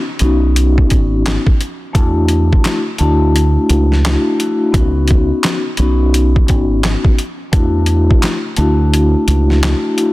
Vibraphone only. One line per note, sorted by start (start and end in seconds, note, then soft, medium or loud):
0.19 1.51 B3 medium
0.19 1.51 C#4 medium
0.19 1.52 D#4 medium
0.19 1.52 F#4 loud
1.93 2.77 A3 medium
1.93 2.77 D4 medium
1.93 2.77 E4 medium
1.93 2.78 F#4 medium
2.99 3.97 A3 loud
2.99 3.98 D4 medium
2.99 3.98 E4 medium
2.99 3.99 F#4 loud
4.04 4.37 A3 medium
4.04 4.37 D4 medium
4.04 4.38 E4 medium
4.04 4.38 F#4 medium
4.38 4.71 A3 medium
4.38 4.72 D4 medium
4.38 4.72 E4 medium
4.38 4.73 F#4 medium
4.72 5.56 B3 medium
4.72 5.56 C#4 medium
4.72 5.57 D#4 medium
4.72 5.57 F#4 loud
5.77 7.09 B3 medium
5.77 7.09 C#4 medium
5.77 7.10 D#4 medium
5.77 7.10 F#4 loud
7.52 8.35 A3 medium
7.52 8.35 D4 medium
7.52 8.36 E4 medium
7.52 8.36 F#4 medium
8.57 9.55 A3 loud
8.57 9.56 D4 medium
8.57 9.56 E4 medium
8.57 9.57 F#4 loud
9.63 9.95 A3 medium
9.63 9.96 D4 medium
9.63 9.96 E4 medium
9.63 9.96 F#4 medium
9.97 10.13 A3 medium
9.97 10.13 D4 medium
9.97 10.13 E4 medium
9.97 10.13 F#4 medium